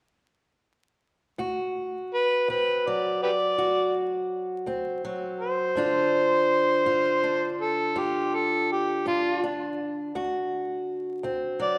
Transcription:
1.38 steel-string acoustic guitar D2 F#4
2.15 harmonica B4
2.48 steel-string acoustic guitar D2 C4, harmonica B4
2.87 steel-string acoustic guitar F#3, harmonica D5
3.23 harmonica G4 B4 D5
3.58 steel-string acoustic guitar D2 F#4
4.66 steel-string acoustic guitar D2 C4
5.05 steel-string acoustic guitar F#3
5.40 harmonica C5
5.75 steel-string acoustic guitar G2 D3 D4 F4
6.86 steel-string acoustic guitar G2 F4
7.23 steel-string acoustic guitar D4
7.61 harmonica A4
7.95 steel-string acoustic guitar G2 F4, harmonica G4
8.35 harmonica A4
8.72 harmonica G4
9.06 steel-string acoustic guitar G2 D4, harmonica F4
9.44 steel-string acoustic guitar D4
10.15 steel-string acoustic guitar D2 F#4
11.23 steel-string acoustic guitar D2 C4
11.60 steel-string acoustic guitar F#3, harmonica D5

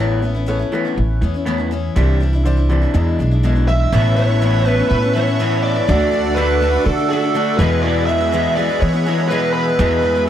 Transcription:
Already playing: upright bass A1, steel-string acoustic guitar A2, grand piano A4 B4 C#5
0.00 steel-string acoustic guitar E3 B3 C#4 E4
0.22 clean electric guitar A2, steel-string acoustic guitar E3 B3 C#4 E4
0.35 steel-string acoustic guitar B3 C#4 E4
0.46 steel-string acoustic guitar A2 E3 B3 C#4 E4, grand piano A4 B4 C#5
0.59 steel-string acoustic guitar B3 C#4 E4
0.72 clean electric guitar A2, steel-string acoustic guitar E3 B3 C#4 E4, grand piano A4 B4 C#5
0.85 steel-string acoustic guitar B3 C#4 E4
0.96 upright bass A1, clean electric guitar A2 E3
1.21 upright bass E2, clean electric guitar A2, steel-string acoustic guitar E3 B3 C#4 E4
1.34 steel-string acoustic guitar B3 C#4 E4
1.46 steel-string acoustic guitar A2 E3 B3 C#4 E4
1.58 steel-string acoustic guitar B3 C#4 E4
1.71 clean electric guitar A2, steel-string acoustic guitar E3 B3 C#4 E4
1.96 upright bass C2, steel-string acoustic guitar C3 E3 G3 D4 E4, grand piano E4 C5 D5
2.20 clean electric guitar C3, steel-string acoustic guitar E3 G3 D4 E4
2.33 steel-string acoustic guitar G3 D4 E4
2.44 steel-string acoustic guitar C3 E3 G3 D4 E4, grand piano E4 C5 D5
2.57 steel-string acoustic guitar G3 D4 E4
2.69 clean electric guitar C3, steel-string acoustic guitar E3 G3 D4 E4, grand piano E4 C5 D5
2.81 steel-string acoustic guitar G3 D4 E4
2.94 steel-string acoustic guitar E2 B2 E3 G#3 D4 E4, upright bass E2, grand piano E4 G#4 D5
3.19 upright bass B1, clean electric guitar E2 B2, steel-string acoustic guitar E3 G#3 D4 E4
3.31 steel-string acoustic guitar E3 G#3 D4 E4
3.43 steel-string acoustic guitar E2 B2 E3 G#3 D4 E4
3.55 steel-string acoustic guitar E3 G#3 D4 E4
3.68 steel-string acoustic guitar E3 G#3 D4 E4, lead electric guitar E5
3.92 upright bass A1, steel-string acoustic guitar A2 E3 B3 C#4 E4, accordion B4 E5 A5 C#6
4.16 steel-string acoustic guitar E3 B3 C#4 E4, lead electric guitar C#5
4.29 steel-string acoustic guitar B3 C#4 E4
4.41 steel-string acoustic guitar A2 E3 B3 C#4 E4
4.66 steel-string acoustic guitar E3 B3 C#4 E4, lead electric guitar B4
4.78 steel-string acoustic guitar B3 C#4 E4
4.89 upright bass A2, lead electric guitar B4
5.03 steel-string acoustic guitar B3 C#4 E4
5.13 steel-string acoustic guitar E3 B3 C#4 E4, lead electric guitar C#5
5.27 steel-string acoustic guitar B3 C#4 E4
5.39 steel-string acoustic guitar A2 E3 B3 C#4 E4
5.63 lead electric guitar D5
5.76 steel-string acoustic guitar B3 C#4 E4
5.88 upright bass D2, steel-string acoustic guitar D3 A3 D4 F#4, accordion A4 D5 F#5 D6
6.11 steel-string acoustic guitar D3 A3 D4 F#4
6.24 steel-string acoustic guitar A3 D4 F#4
6.35 steel-string acoustic guitar D3 A3 D4 F#4, lead electric guitar B4
6.61 steel-string acoustic guitar D3 A3 D4 F#4
6.73 steel-string acoustic guitar A3 D4 F#4
6.85 upright bass D3, lead electric guitar A4
6.98 steel-string acoustic guitar A3 D4 F#4
7.10 steel-string acoustic guitar D3 A3 D4 F#4, lead electric guitar A4
7.22 steel-string acoustic guitar A3 D4 F#4
7.34 steel-string acoustic guitar D3 A3 D4 F#4
7.58 upright bass E2, steel-string acoustic guitar E2 B2 E3 G#3 B3 E4, clean electric guitar G#4, accordion G#4 B4 E5 B5, lead electric guitar B4
7.82 clean electric guitar E2 B2 E3 G#3, lead electric guitar D5
7.86 clean electric guitar B3 G#4
8.06 steel-string acoustic guitar E3 G#3, lead electric guitar E5
8.10 steel-string acoustic guitar B3 E4
8.20 steel-string acoustic guitar E3 G#3 B3 E4
8.32 steel-string acoustic guitar E2 B2 E3 G#3 B3 E4, clean electric guitar G#4
8.55 steel-string acoustic guitar E3 G#3 B3 E4, clean electric guitar G#4, lead electric guitar D5
8.69 steel-string acoustic guitar E3 G#3 B3 E4
8.80 upright bass E3, lead electric guitar C#5
8.94 steel-string acoustic guitar E3 G#3 B3 E4
9.06 steel-string acoustic guitar E3 G#3 B3 E4, clean electric guitar G#4
9.18 steel-string acoustic guitar E3 G#3 B3 E4
9.28 steel-string acoustic guitar E2 B2 E3 G#3 B3 E4, lead electric guitar B4
9.33 clean electric guitar G#4
9.53 lead electric guitar B4
9.79 steel-string acoustic guitar E2 B2 E3 G#3 B3 E4, upright bass E2, clean electric guitar G#4
10.03 steel-string acoustic guitar E3 G#3 B3 E4
10.15 steel-string acoustic guitar E3 G#3 B3 E4

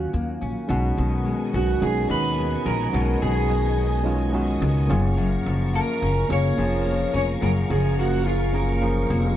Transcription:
Already playing: nylon-string guitar D#3 A#3 C#4, reed electric piano F#3 A#3 C#4 F4 F5, clean electric guitar F#4
0.13 upright bass D#2, nylon-string guitar A#3
0.41 upright bass A#1, nylon-string guitar C#4
0.68 upright bass B1, nylon-string guitar B2, reed electric piano G#3 C#4 D#4 F#4, string machine B3 D#5 G#5 C#6
0.97 upright bass B1, nylon-string guitar D#3
1.25 nylon-string guitar G#3
1.53 upright bass B1, nylon-string guitar C#4, clean electric guitar F#4
1.80 upright bass B1, reed electric piano G#3 C#4 D#4 F#4, nylon-string guitar G#3, clean electric guitar G#4
2.08 upright bass D#2, nylon-string guitar D#3, reed electric piano G#3 C#4 D#4 F#4, clean electric guitar B4
2.38 nylon-string guitar G#3
2.65 upright bass A#1, nylon-string guitar C#4, clean electric guitar A#4
2.92 upright bass B1, nylon-string guitar B2, reed electric piano G#3 C#4 D#4 F#4
3.21 upright bass B1, nylon-string guitar D#3, clean electric guitar G#4
3.49 nylon-string guitar G#3
3.77 nylon-string guitar C#4
4.04 reed electric piano G#3 C#4 D#4 F4, nylon-string guitar G#3
4.32 nylon-string guitar D#3, reed electric piano G#3 C#4 D#4 F#4
4.61 upright bass C#2, nylon-string guitar G#3
4.88 upright bass F#1, nylon-string guitar F#2, reed electric piano A#3 C#4 F4 G#4, string machine A#4 F5 A#5
5.17 nylon-string guitar F#2
5.46 upright bass F#1, nylon-string guitar F3
5.74 nylon-string guitar A#3, clean electric guitar A#4
6.02 upright bass F#1, nylon-string guitar C#4
6.28 upright bass F#1, reed electric piano A#3 C#4 F4 G#4, nylon-string guitar A#3
6.33 clean electric guitar C#5
6.56 upright bass F1, nylon-string guitar F3, reed electric piano A#3 C#4 F4 G#4
6.85 nylon-string guitar A#3
7.14 upright bass F1, nylon-string guitar C#4, clean electric guitar C#5
7.41 upright bass F#1, nylon-string guitar F#2, reed electric piano A#3 C#4 F4 G#4, clean electric guitar A#4
7.70 upright bass F#1, nylon-string guitar F3, clean electric guitar G#4
7.98 nylon-string guitar A#3, clean electric guitar F#4
8.25 nylon-string guitar C#4, clean electric guitar F4
8.52 reed electric piano A#3 C#4 F4 G#4, nylon-string guitar A#3, clean electric guitar A#4
8.81 nylon-string guitar F3, reed electric piano A#3 C#4 F4 G#4
9.10 upright bass F1, nylon-string guitar A#3

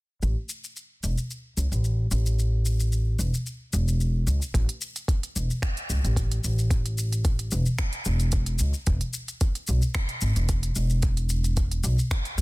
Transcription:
0.22 upright bass A1, shaker
0.49 shaker
0.64 shaker
0.76 shaker
1.03 upright bass E1, shaker
1.18 shaker
1.31 shaker
1.57 upright bass C#2, shaker
1.72 upright bass A1, shaker
1.84 shaker
2.11 upright bass A1, shaker
2.26 shaker
2.39 shaker
2.66 shaker
2.80 shaker
2.92 shaker
3.19 upright bass E1, shaker
3.34 shaker
3.46 shaker
3.73 upright bass E1, shaker
3.88 shaker
4.01 shaker
4.27 upright bass C#2, shaker
4.42 shaker
4.54 upright bass A1, kick, closed hi-hat, shaker
4.69 closed hi-hat, shaker
4.81 shaker
4.96 closed hi-hat, shaker
5.08 kick, closed hi-hat, shaker
5.23 closed hi-hat, shaker
5.36 upright bass E1, shaker
5.50 shaker
5.62 finger snap, kick, closed hi-hat, shaker
5.77 closed hi-hat, shaker
5.90 upright bass C#2, shaker
6.04 upright bass A1, closed hi-hat, shaker
6.16 kick, closed hi-hat, shaker
6.32 closed hi-hat, shaker
6.44 upright bass A1, shaker
6.59 shaker
6.71 kick, closed hi-hat, shaker
6.86 closed hi-hat, shaker
6.98 shaker
7.13 closed hi-hat, shaker
7.25 kick, closed hi-hat, shaker
7.39 closed hi-hat, shaker
7.51 upright bass E1, shaker
7.66 shaker
7.78 finger snap, kick, closed hi-hat, shaker
7.93 closed hi-hat, shaker
8.05 upright bass E1, shaker
8.20 closed hi-hat, shaker
8.32 kick, closed hi-hat, shaker
8.46 closed hi-hat, shaker
8.59 upright bass C#2, shaker
8.74 shaker
8.87 upright bass E1, kick, closed hi-hat, shaker
9.01 closed hi-hat, shaker
9.13 shaker
9.28 closed hi-hat, shaker
9.41 kick, closed hi-hat, shaker
9.55 closed hi-hat, shaker
9.67 upright bass B1, shaker
9.82 shaker
9.95 finger snap, kick, closed hi-hat, shaker
10.09 closed hi-hat, shaker
10.21 upright bass G#1, shaker
10.36 upright bass E1, closed hi-hat, shaker
10.49 kick, closed hi-hat, shaker
10.63 closed hi-hat, shaker
10.76 upright bass E1, shaker
10.90 shaker
11.02 kick, closed hi-hat, shaker
11.17 closed hi-hat, shaker
11.29 shaker
11.44 closed hi-hat, shaker
11.57 kick, closed hi-hat, shaker
11.71 closed hi-hat, shaker
11.84 upright bass B1, shaker
11.99 shaker
12.11 finger snap, kick, closed hi-hat, shaker
12.25 closed hi-hat, shaker
12.38 upright bass E2, shaker

